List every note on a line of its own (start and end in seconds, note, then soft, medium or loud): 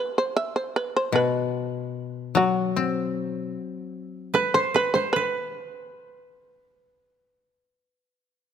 0.00 0.16 B4 medium
0.18 0.36 C5 medium
0.37 0.55 E5 loud
0.56 0.75 C5 medium
0.76 0.95 B4 medium
0.96 1.15 C5 medium
1.12 3.54 B2 medium
1.12 2.33 B4 medium
2.35 4.75 F#3 medium
2.35 4.32 F#4 medium
2.76 4.36 C4 soft
4.34 4.61 B4 medium
4.34 4.54 B4 medium
4.54 4.74 C5 medium
4.54 4.80 C5 medium
4.74 5.01 B4 medium
4.74 4.93 B4 medium
4.94 5.12 C5 medium
4.94 5.22 C5 medium
5.13 8.54 B4 medium